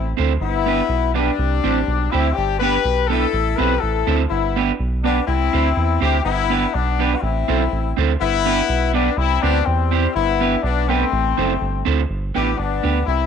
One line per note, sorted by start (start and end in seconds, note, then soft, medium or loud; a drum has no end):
0.00 0.14 A1 medium
0.00 0.15 C4 medium
0.00 0.15 E4 medium
0.17 0.38 D2 loud
0.17 0.32 C4 medium
0.17 0.32 E4 medium
0.17 0.32 A4 medium
0.17 0.32 C5 medium
0.40 0.82 G1 loud
0.40 1.11 B3 medium
0.40 1.11 E4 loud
0.66 0.80 B3 medium
0.66 0.81 D4 medium
0.66 0.81 G4 medium
0.66 0.81 B4 medium
0.89 1.30 B1 loud
1.14 2.14 G3 medium
1.14 1.29 B3 medium
1.14 2.12 D4 medium
1.14 1.29 D4 medium
1.14 1.30 G4 medium
1.14 1.30 B4 medium
1.39 1.60 C2 loud
1.64 1.84 A1 medium
1.64 1.78 C4 loud
1.64 1.78 E4 medium
1.64 1.78 G4 loud
1.64 1.79 C5 medium
1.87 2.09 B1 medium
2.11 2.33 D2 medium
2.11 2.27 C4 medium
2.11 2.36 C4 medium
2.11 2.35 E4 medium
2.11 2.27 E4 medium
2.11 2.27 G4 medium
2.11 2.28 C5 medium
2.33 2.62 D4 medium
2.33 2.60 G4 loud
2.38 2.78 G1 loud
2.59 2.76 B3 medium
2.59 2.76 D4 medium
2.59 3.07 G4 medium
2.59 2.76 G4 medium
2.59 3.06 B4 loud
2.59 2.76 B4 medium
2.85 3.26 B1 medium
3.08 3.24 B3 medium
3.08 3.24 D4 medium
3.08 3.59 E4 medium
3.08 3.25 G4 medium
3.08 3.58 A4 loud
3.08 3.25 B4 medium
3.33 3.55 A1 loud
3.57 3.79 B1 loud
3.57 3.73 C4 medium
3.57 3.73 E4 medium
3.57 3.82 G4 medium
3.57 3.73 A4 medium
3.57 3.81 B4 loud
3.57 3.73 C5 loud
3.80 4.04 A1 medium
3.80 4.19 E4 medium
3.80 4.18 A4 loud
4.07 4.27 D2 medium
4.07 4.21 C4 medium
4.07 4.22 E4 loud
4.07 4.22 A4 loud
4.07 4.22 C5 loud
4.29 4.72 G1 loud
4.29 4.73 B3 medium
4.29 4.73 E4 medium
4.56 4.70 B3 medium
4.56 4.71 D4 medium
4.56 4.71 G4 medium
4.56 4.71 B4 medium
4.80 5.21 B1 medium
5.04 5.19 B3 medium
5.04 5.26 B3 medium
5.04 5.26 D4 medium
5.04 5.19 D4 medium
5.04 5.19 G4 medium
5.04 5.20 B4 medium
5.27 5.50 C2 medium
5.27 5.98 C4 medium
5.27 5.98 E4 loud
5.53 5.73 D2 loud
5.53 5.68 C4 medium
5.53 5.68 E4 medium
5.53 5.68 G4 medium
5.53 5.68 C5 medium
5.77 5.99 E2 medium
6.01 6.21 D2 medium
6.01 6.16 C4 medium
6.01 6.16 E4 medium
6.01 6.24 E4 medium
6.01 6.16 G4 loud
6.01 6.25 G4 loud
6.01 6.16 C5 loud
6.25 6.66 G1 loud
6.25 6.70 B3 medium
6.25 6.70 E4 loud
6.50 6.64 B3 medium
6.50 6.65 D4 medium
6.50 6.65 G4 medium
6.50 6.65 B4 medium
6.73 7.15 B1 medium
6.73 7.15 B3 medium
6.73 7.16 D4 medium
6.99 7.14 B3 medium
6.99 7.14 D4 medium
6.99 7.14 G4 medium
6.99 7.14 B4 medium
7.15 7.22 F#4 medium
7.22 7.44 A1 loud
7.22 7.96 C4 medium
7.22 7.96 E4 loud
7.48 7.68 B1 loud
7.48 7.62 C4 medium
7.48 7.63 E4 medium
7.48 7.63 A4 loud
7.48 7.63 C5 loud
7.72 7.94 A1 medium
7.97 8.17 D2 medium
7.97 8.11 C4 medium
7.97 8.11 E4 medium
7.97 8.12 A4 medium
7.97 8.12 C5 loud
8.20 8.62 G1 loud
8.20 8.90 B3 loud
8.20 8.90 E4 loud
8.46 8.60 B3 medium
8.46 8.60 D4 medium
8.46 8.60 G4 medium
8.46 8.60 B4 medium
8.69 9.10 B1 medium
8.94 9.08 B3 medium
8.94 9.17 B3 medium
8.94 9.08 D4 medium
8.94 9.17 D4 loud
8.94 9.09 G4 medium
8.94 9.09 B4 medium
9.17 9.39 C2 loud
9.17 9.43 C4 medium
9.17 9.43 E4 loud
9.42 9.62 D2 loud
9.42 9.65 B3 medium
9.42 9.57 C4 medium
9.42 9.65 D4 loud
9.42 9.57 E4 loud
9.42 9.57 G4 loud
9.42 9.58 C5 loud
9.66 10.08 E2 medium
9.66 10.14 G3 medium
9.66 10.14 C4 medium
9.91 10.05 C4 medium
9.91 10.06 E4 medium
9.91 10.06 G4 medium
9.91 10.06 C5 loud
10.15 10.56 G1 loud
10.15 10.60 B3 medium
10.15 10.60 E4 loud
10.40 10.54 B3 medium
10.40 10.55 D4 medium
10.40 10.55 G4 loud
10.40 10.55 B4 medium
10.63 11.04 B1 loud
10.63 10.89 B3 medium
10.63 10.89 D4 loud
10.89 11.87 A3 medium
10.89 11.03 B3 medium
10.89 11.86 C4 medium
10.89 11.03 D4 medium
10.89 11.03 G4 medium
10.89 11.04 B4 medium
11.12 11.34 A1 loud
11.37 11.57 F#1 medium
11.37 11.52 C4 medium
11.37 11.52 E4 medium
11.37 11.52 A4 medium
11.37 11.52 C5 medium
11.61 11.83 G1 medium
11.85 12.06 D2 loud
11.85 12.00 C4 medium
11.85 12.00 E4 loud
11.85 12.00 A4 loud
11.85 12.01 C5 loud
12.10 12.31 G1 loud
12.35 12.55 A1 loud
12.35 12.49 B3 medium
12.35 12.49 D4 medium
12.35 12.57 E4 medium
12.35 12.56 G4 loud
12.35 12.50 G4 medium
12.35 12.50 B4 loud
12.57 12.80 G1 medium
12.57 13.07 B3 medium
12.57 13.07 D4 medium
12.57 muted clean electric guitar stroke soft
12.83 13.04 D2 loud
12.83 12.98 B3 medium
12.83 12.98 D4 medium
12.83 12.98 G4 medium
12.83 12.98 B4 medium
13.06 13.26 C2 loud
13.06 13.26 C4 medium
13.06 13.26 E4 loud